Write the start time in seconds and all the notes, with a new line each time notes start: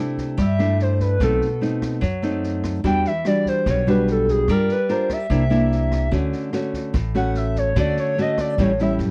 Already playing: C3 A3
0.00 D4 E4
0.18 kick, snare
0.38 G2 G3 E5, kick, cross-stick, snare
0.59 A3 D4 E4, snare
0.79 C5, snare
0.99 B4, kick, snare
1.20 B1 B2 A3 C4 D#4 A4, kick, cross-stick, snare
1.41 snare
1.61 A3 C4 D#4, snare
1.82 kick, cross-stick, snare
2.01 F#2 F#3, kick, snare
2.22 A3 C4 D#4, snare
2.43 snare
2.63 kick, cross-stick, snare
2.84 E2 E3 G3 D4 F#4 G5, kick, snare
3.05 E5, snare
3.25 G3 D4 F#4 D5, cross-stick, snare
3.46 C5, kick, snare
3.66 B1 B2 C#5, kick, cross-stick, snare
3.87 G3 D4 F#4 B4, snare
4.07 snare
4.12 A4
4.28 G#4, kick, snare
4.48 G2 G3 D4 F4 A#4, kick, cross-stick, snare
4.69 B4, snare
4.88 D4 F4 A#4 C5, snare
5.10 E5, kick, cross-stick, snare
5.30 C2 C3 A#3 D4 E4, kick, snare
5.50 A#3 D4 E4, snare
5.72 snare
5.92 kick, cross-stick, snare
6.11 D2 D3 A3 C#4 F#4, kick, snare
6.32 snare
6.53 A3 C#4 F#4, cross-stick, snare
6.73 kick, snare
6.94 A1 A2, kick, cross-stick, snare
7.15 A3 C#4 F#4 F#5, snare
7.34 E5, snare
7.56 C#5, kick, snare
7.76 D2 D3 A3 C#4 F#4 D5, kick, cross-stick, snare
7.97 C#5, snare
8.17 A3 C#4 F#4 D#5, snare
8.38 D5, kick, cross-stick, snare
8.58 A1 A2 G3 C#4 E4 C#5, kick, snare
8.78 G3 C#4 E4 E5, snare
8.99 F#2, snare